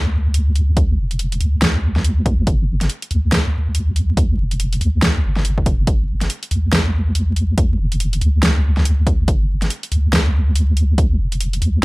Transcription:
Already playing: D2
0.34 closed hi-hat
0.56 closed hi-hat
0.77 kick, closed hi-hat
0.98 F1
1.11 closed hi-hat
1.19 closed hi-hat
1.32 closed hi-hat
1.41 D2, closed hi-hat
1.62 snare, closed hi-hat
1.96 snare
2.04 closed hi-hat
2.26 kick, closed hi-hat
2.47 G1, kick, closed hi-hat
2.81 snare, closed hi-hat
2.90 closed hi-hat
3.02 closed hi-hat
3.11 D2, closed hi-hat
3.32 snare, closed hi-hat
3.75 closed hi-hat
3.96 closed hi-hat
4.17 kick, closed hi-hat
4.39 F1
4.51 closed hi-hat
4.60 closed hi-hat
4.73 closed hi-hat
4.81 D2, closed hi-hat
5.02 snare, closed hi-hat
5.24 G1
5.36 snare
5.45 closed hi-hat
5.58 kick
5.66 F1, kick, closed hi-hat
5.87 G1, kick, closed hi-hat
6.21 snare, closed hi-hat
6.30 closed hi-hat
6.43 closed hi-hat
6.51 D2, closed hi-hat
6.73 snare, closed hi-hat
7.15 closed hi-hat
7.36 closed hi-hat
7.58 kick, closed hi-hat
7.79 F1
7.92 closed hi-hat
8.00 closed hi-hat
8.13 closed hi-hat
8.21 D2, closed hi-hat
8.43 snare, closed hi-hat
8.77 snare
8.85 closed hi-hat
9.07 kick, closed hi-hat
9.28 G1, kick, closed hi-hat
9.62 snare, closed hi-hat
9.70 closed hi-hat
9.83 closed hi-hat
9.92 D2, closed hi-hat
10.13 snare, closed hi-hat
10.55 closed hi-hat
10.77 closed hi-hat
10.98 kick, closed hi-hat
11.19 F1
11.32 closed hi-hat
11.41 closed hi-hat
11.53 closed hi-hat
11.62 D2, closed hi-hat

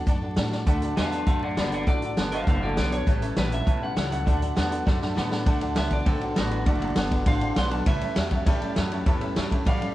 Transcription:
0.07 F#2 A3 D4 F#4 A4 D5 F#5 A5, kick, closed hi-hat
0.22 D4 F#4 A4 D5 F#5 A5
0.36 A2 D3 A3 D4 F#4 A4 D5 F#5 A5, snare, closed hi-hat
0.51 D4 F#4 A4 D5 F#5 A5, snare
0.66 D2 D3 A3 D4 F#4 A4 D5 F#5 A5, kick, closed hi-hat
0.82 D4 F#4 A4 D5 F#5 A5, closed hi-hat
0.97 E2 D3 A3 B3 D4 F#4 A4 D5 F5 F#5 A5, snare, closed hi-hat
1.11 D4 F#4 A4 D5 F5 F#5 A5, closed hi-hat
1.26 F#2 D3 A3 D4 F#4 A4 D5 F5 F#5 A5, kick, closed hi-hat
1.41 D4 F#4 A4 D5 F#5 A5
1.57 F#1 D3 A3 B3 D4 F#4 A4 D5 F#5 A5, snare, closed hi-hat
1.71 D4 F#4 A4 D5 F#5 A5, closed hi-hat
1.86 A1 D3 A3 D4 F#4 A4 D5 F#5 A5, kick, closed hi-hat
2.02 D4 F#4 A4 D5 F#5 A5, closed hi-hat
2.17 G1 D3 A3 B3 D4 F#4 A4 D5 F#5 A5, snare, closed hi-hat
2.31 D4 F#4 A4 C5 D5 F5 F#5 A5, closed hi-hat
2.47 F#1 D3 A3 D4 F#4 A4 C5 D5 F5 F#5 A5, kick, closed hi-hat
2.62 D4 F#4 A4 D5 F#5 A5
2.77 B1 D3 A3 B3 D4 F#4 A4 D5 F#5 A5, snare, closed hi-hat
2.92 D4 F#4 A4 C#5 D5 F#5 A5, closed hi-hat
3.06 A1 A2 E3 G3 C#4 G4 A4 C#5 E5 A5, kick, closed hi-hat
3.22 G3 C#4 G4 A4 C#5 E5 A5, closed hi-hat
3.36 A#1 A2 E3 F#3 G3 C#4 G4 A4 B4 C#5 E5 A5, snare, closed hi-hat
3.51 G3 C#4 G4 A4 C#5 E5 A5, closed hi-hat
3.64 B1 A2 E3 G3 C#4 G4 A4 C#5 E5 A5, kick, closed hi-hat
3.81 G3 C#4 G4 A4 C#5 E5 F#5 A5
3.96 C#2 A2 E3 F#3 G3 C#4 G4 A4 C#5 E5 A5, snare, closed hi-hat
4.10 G3 C#4 G4 A4 C#5 E5 F#5 A5, closed hi-hat
4.26 D2 D3 A3 D4 F#4 A4 D5 F#5 A5, kick, closed hi-hat
4.41 D4 F#4 A4 D5 F#5 A5, closed hi-hat
4.55 E2 D3 A3 B3 D4 F#4 A4 D5 F#5 A5, snare, closed hi-hat
4.70 D4 F#4 A4 D5 F#5 A5, closed hi-hat
4.85 F#2 D3 A3 D4 F#4 A4 D5 F#5 A5, kick, snare
5.00 D4 F#4 A4 D5 F#5 A5 B5, snare
5.15 A2 D3 A3 B3 D4 F#4 A4 D5 F#5 A5, snare
5.30 D4 F#4 A4 D5 F#5 A5, snare
5.45 D2 D3 A3 D4 F#4 A4 D5 F#5 A5, kick, ride
5.61 D4 F#4 A4 D5 F#5 A5, ride
5.76 C#2 D3 A3 B3 D4 F#4 A4 D5 E5 A5, snare, ride
5.90 D4 F#4 A4 D5 F#5 A5, kick, ride
6.06 B1 D3 A3 C4 D4 F#4 A4 D5 F#5 A5, kick, ride
6.21 D4 F#4 A4 D5 F#5 A5, ride
6.35 A1 D3 A3 B3 D4 F#4 A4 D5 F#5 A5, snare, ride
6.50 D4 F#4 A4 D5 F#5 A5, ride
6.65 F#1 D3 A3 D4 F#4 A4 D5 F#5 A5, kick, ride
6.80 D4 F#4 A4 D5 F#5 A5, ride
6.96 G1 D3 A3 B3 D4 F#4 A4 D5 F#5 A5, snare, ride
7.11 D4 F#4 A4 D5 F#5 A5, kick, ride
7.25 A1 D3 A3 C4 D4 F#4 A4 D5 F5 F#5 A5, kick, ride
7.41 D4 F#4 A4 D5 F#5 A5, ride
7.56 B1 D3 A3 B3 D4 F#4 A4 D5 F#5 A5 C6, snare, ride
7.71 D4 F#4 A4 D5 F#5 A5, ride
7.86 C#2 A2 E3 G3 C#4 G4 A4 C#5 E5 A5, kick, ride
8.01 G3 C#4 G4 A4 C#5 E5 A5, muted upright bass stroke, ride
8.15 E2 A2 F#3 G3 C#4 G4 A4 C#5 E5 A5, snare, ride
8.31 G3 C#4 G4 A4 C#5 E5 A5, kick, ride
8.46 G2 A2 E3 G3 C#4 G4 A4 C#5 E5 A5, kick, ride
8.61 G3 C#4 G4 A4 C#5 E5 A5, muted upright bass stroke, ride
8.76 F#2 A2 F#3 G3 C#4 G4 A4 C#5 E5 A5, snare, ride
8.92 G3 C#4 G4 A4 C#5 E5 A5, ride
9.06 E2 A2 E3 G3 C#4 G4 A4 C#5 E5 A5, kick, ride
9.21 G3 C#4 G4 A4 C#5 E5 A5, ride
9.36 G2 A2 F#3 G3 C#4 G4 A4 C#5 E5 A5, snare, ride
9.50 G3 C#4 G4 A4 C#5 E5 A5, kick, ride
9.65 F#2 A2 E3 G3 C#4 G4 A4 C#5 E5 F5 F#5, kick, ride
9.80 G3 C#4 G4 A4 C#5 E5 B5, ride

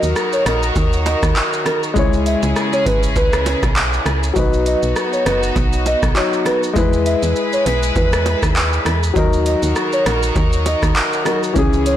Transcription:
Already playing: D#3 F#3 D#4 F#4 A#4
0.03 D#2, shaker
0.16 cross-stick, shaker
0.33 C#5, shaker
0.46 A#1 A#4, cross-stick, closed hi-hat, low bongo, shaker
0.63 shaker
0.76 D#2, kick, high bongo, shaker
0.93 shaker
1.06 D#5, closed hi-hat, high bongo, shaker
1.23 D#2, kick, cross-stick, shaker
1.36 clap, shaker
1.53 shaker
1.66 A#4, cross-stick, closed hi-hat, low bongo, shaker
1.83 shaker
1.94 C#2 C#3 G#3 C#4 E4 G#4, kick, high bongo, shaker
1.99 C#5
2.13 shaker
2.26 E5, closed hi-hat, shaker
2.43 C#2, high bongo, shaker
2.56 cross-stick, shaker
2.73 C#5, high bongo, shaker
2.86 G#1 B4, kick, closed hi-hat, high bongo, low bongo, shaker
3.03 shaker
3.16 C#2 B4, kick, high bongo, shaker
3.33 cross-stick, shaker
3.46 closed hi-hat, high bongo, shaker
3.63 B1, kick, cross-stick, high bongo, shaker
3.76 clap, shaker
3.93 shaker
4.06 C#2, cross-stick, closed hi-hat, low bongo, shaker
4.23 shaker
4.34 B1 F#3 B3 D#4 F#4, kick, high bongo, shaker
4.38 B4
4.53 shaker
4.66 D#5, closed hi-hat, shaker
4.83 B1, shaker
4.96 cross-stick, shaker
5.13 C#5, shaker
5.26 F#1 B4, cross-stick, closed hi-hat, low bongo, shaker
5.43 shaker
5.56 B1, kick, high bongo, shaker
5.73 shaker
5.86 D#5, closed hi-hat, high bongo, shaker
6.03 B1, kick, cross-stick, shaker
6.15 F#3 D#4 C#5, clap, shaker
6.33 shaker
6.45 B4, cross-stick, closed hi-hat, low bongo, shaker
6.63 shaker
6.74 E2 G#3 E4 G#4 B4, kick, high bongo, shaker
6.78 B4
6.93 shaker
7.06 E5, closed hi-hat, shaker
7.23 E2, shaker
7.36 shaker
7.53 C#5, shaker
7.66 B1 B4, closed hi-hat, low bongo, shaker
7.83 shaker
7.96 E2 B4, kick, high bongo, shaker
8.13 cross-stick, shaker
8.26 closed hi-hat, high bongo, shaker
8.43 D#2, kick, cross-stick, shaker
8.56 clap, shaker
8.73 shaker
8.85 E2, cross-stick, closed hi-hat, low bongo, shaker
9.03 shaker
9.14 D#2 D#3 F#3 D#4 F#4 A#4, kick, high bongo, shaker
9.19 A#4
9.33 shaker
9.46 D#5, closed hi-hat, shaker
9.63 D#2, shaker
9.76 cross-stick, shaker
9.93 C#5, shaker
10.06 A#1 A#4, cross-stick, closed hi-hat, low bongo, shaker
10.23 shaker
10.36 D#2, kick, high bongo, shaker
10.53 shaker
10.66 D#5, closed hi-hat, high bongo, shaker
10.83 D#2, kick, cross-stick, shaker
10.96 clap, shaker
11.13 shaker
11.25 F#3 D#4 F#4 A#4, cross-stick, closed hi-hat, low bongo, shaker
11.43 shaker
11.54 C#2 C#3 E3 C#4 E4 G#4, kick, high bongo, shaker
11.58 G#4
11.73 shaker
11.86 C#5, closed hi-hat, shaker

